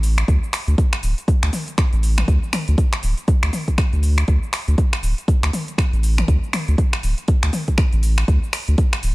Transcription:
Already playing: A1
0.03 open hi-hat, cabasa
0.18 finger snap, cabasa
0.28 D2, kick, closed hi-hat, cabasa
0.44 cabasa
0.53 finger snap, open hi-hat, cabasa
0.67 D2, closed hi-hat, cabasa
0.78 kick, closed hi-hat, cabasa
0.93 finger snap, closed hi-hat, cabasa
1.03 D1, open hi-hat, cabasa
1.18 closed hi-hat, cabasa
1.28 kick, closed hi-hat, cabasa
1.43 D2, finger snap, cabasa
1.53 open hi-hat, mid tom, cabasa
1.68 closed hi-hat, cabasa
1.78 finger snap, kick, closed hi-hat, cabasa
1.93 A1, closed hi-hat, cabasa
2.03 open hi-hat, cabasa
2.18 finger snap, mid tom, cabasa
2.28 D2, kick, closed hi-hat, cabasa
2.43 cabasa
2.53 finger snap, open hi-hat, mid tom, cabasa
2.68 D2, closed hi-hat, cabasa
2.78 kick, closed hi-hat, cabasa
2.93 finger snap, closed hi-hat, cabasa
3.03 D1, open hi-hat, cabasa
3.17 closed hi-hat, cabasa
3.28 kick, closed hi-hat, cabasa
3.43 D2, finger snap, closed hi-hat, cabasa
3.53 open hi-hat, mid tom, cabasa
3.68 kick, closed hi-hat, cabasa
3.78 finger snap, kick, closed hi-hat, cabasa
3.93 D2, closed hi-hat, cabasa
4.03 open hi-hat, cabasa
4.18 finger snap, closed hi-hat, cabasa
4.28 D2, kick, closed hi-hat, cabasa
4.43 cabasa
4.53 finger snap, open hi-hat, cabasa
4.68 D2, closed hi-hat, cabasa
4.78 kick, closed hi-hat, cabasa
4.93 finger snap, closed hi-hat, cabasa
5.03 D1, open hi-hat, cabasa
5.18 closed hi-hat, cabasa
5.28 kick, closed hi-hat, cabasa
5.43 D2, finger snap, closed hi-hat, cabasa
5.53 open hi-hat, mid tom, cabasa
5.68 closed hi-hat, cabasa
5.78 finger snap, kick, closed hi-hat, cabasa
5.93 A1, closed hi-hat, cabasa
6.03 open hi-hat, cabasa
6.18 finger snap, closed hi-hat, mid tom, cabasa
6.28 D2, kick, closed hi-hat, cabasa
6.43 cabasa
6.53 finger snap, open hi-hat, mid tom, cabasa
6.68 D2, closed hi-hat, cabasa
6.78 kick, closed hi-hat, cabasa
6.93 finger snap, closed hi-hat, cabasa
7.03 D1, open hi-hat, cabasa
7.18 closed hi-hat, cabasa
7.28 kick, closed hi-hat, cabasa
7.43 D2, finger snap, closed hi-hat, cabasa
7.53 open hi-hat, mid tom, cabasa
7.68 kick, closed hi-hat, cabasa
7.78 finger snap, kick, closed hi-hat, cabasa
7.93 A1, closed hi-hat, cabasa
8.03 open hi-hat, cabasa
8.18 finger snap, closed hi-hat, cabasa
8.28 D2, kick, closed hi-hat, cabasa
8.43 cabasa
8.53 finger snap, open hi-hat, cabasa
8.68 D2, closed hi-hat, cabasa
8.78 kick, closed hi-hat, cabasa
8.93 finger snap, closed hi-hat, cabasa
9.03 D1, open hi-hat, cabasa

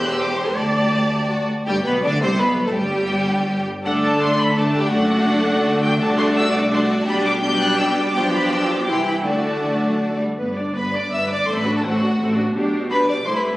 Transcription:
Already playing: E1 E2 G4 C5
0.01 F#6
0.11 E6
0.20 D6
0.37 C6
0.56 D2 G4 D5 A5
1.30 F#4 D5
1.66 G1 G2 G3 G4 G5
1.85 B1 B2 B3 B4 B5
2.04 D2 D3 D4 D5 D6
2.22 C2 C3 C4 C5 C6
2.39 B1 B2 B3 B4 B5
2.66 A2 A3 A4 A5
2.75 G1 G2 G3 G4 G5
3.84 D2 D3 A3 D4 A4 D5 F#5
4.03 A5
4.21 C6
4.39 B5
4.56 A3 D4 A4 D5 A5
4.75 G4
4.84 G5
4.92 F#1 F#2 A3 D4 F#4 D5 F#5
5.64 D2 D3
5.82 G5
5.99 C2 C3 A3 D4 F#4 D5 A5
6.18 C6
6.36 E6
6.55 D6
6.71 A3 D4 F#4 D5 C6
7.01 A5
7.06 B1 B2 G3 D4 G4 G5 B5
7.26 D6
7.42 G3 D4 G4 G5 G6
7.60 F#6
7.78 E6
8.07 D6
8.15 B1 B2 F3 D4 G4 G5
8.33 B5
8.52 E6
8.71 D6
8.87 C2 C3 E3 E4 G4 G5 C6
9.08 B5
9.25 D2 D3 A3 D4 F#4 D5 A5
9.64 D3
9.83 F#3
10.02 A3
10.21 G3
10.38 G1 G2 B3 B4
10.57 D4 D5
10.75 G1 G2 B3 B4 B5
10.94 D4 D5 D6
11.12 G1 G2 B3 B4 E5 E6
11.30 D4 D5 D6
11.48 A1 A2 C4 A4 C5 C6
11.57 B4 B5
11.66 D4 F#4
11.75 A4 A5
11.83 A1 A2 C4 F#4 A4 F#5
12.02 D4 F#4
12.20 A1 A2 C4 A4
12.38 D4 F#4
12.55 B1 B2 D4 G4
12.91 D4 G4 B4 B5
13.08 D5 D6
13.26 C2 C3 A3 E4 C5 C6
13.36 B4 B5

